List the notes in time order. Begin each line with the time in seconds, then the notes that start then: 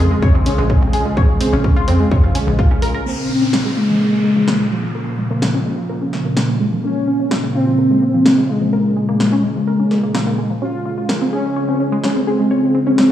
Already playing: C#3 F3 G#3
0.00 F2 G#4
0.11 G#3
0.22 C#5, kick
0.35 A#1 C4
0.46 C#4, open hi-hat
0.58 A#1 G#3
0.70 C#4, kick
0.82 A#1 C4
0.93 G#4, open hi-hat
1.05 G#3
1.17 A#1 C#5, kick
1.41 C4, open hi-hat
1.53 A#1 C#4
1.64 C#4, kick
1.76 F4
1.88 F2 C4, open hi-hat
2.00 G#3
2.11 C#5, kick
2.24 F1 F4
2.35 C#4, open hi-hat
2.47 A#1 G#3
2.59 F4, kick
2.71 A#1 C#4
2.82 A#4, open hi-hat
2.94 A#4
3.06 A#2 C#3 F3 A#3 C4, downlifter
3.30 C#4
3.42 C#4
3.53 F4, snare
3.65 G#3
3.77 G#3 F4
3.89 F3
4.00 A#4
4.13 G#3
4.24 A#3
4.36 F3
4.48 A#3, snare
4.60 G#3
4.71 F3 F4
4.83 F3
4.95 A#4
5.19 G#3
5.31 A#3
5.42 A#3, snare
5.54 C#4
5.66 G#3
5.78 F3
5.89 A#4
6.02 C#4
6.13 A#3, snare
6.25 A#3
6.37 A#3, snare
6.49 A#3
6.60 G#3
6.72 F3
6.84 A#3 C#4
7.08 C#4
7.20 C#4
7.31 F4, snare
7.43 G#3
7.55 C4 F4
7.67 F3
7.78 A#4
7.91 G#3
8.02 A#3
8.14 F3
8.26 A#3, snare
8.38 G#3
8.49 G#3 F4
8.61 F3
8.73 A#4
8.97 G#3
9.09 A#3
9.20 A#3, snare
9.32 C#4
9.44 G#3
9.56 F3
9.67 A#4
9.80 C#4
9.91 A#3, snare
10.03 A#3
10.15 A#3, snare
10.27 A#3
10.38 G#3
10.50 F3
10.62 C#3 F3 G#3 C#4 F4
10.85 F4
10.98 F4
11.09 A#4, snare
11.21 C4
11.33 C#4 G#4
11.45 G#3
11.56 C#5
11.69 C4
11.80 C#4
11.92 G#3
12.04 C#4, snare
12.16 C4
12.27 C4 G#4
12.39 G#3
12.51 C#5
12.74 C4
12.87 C#4
12.98 C#4, snare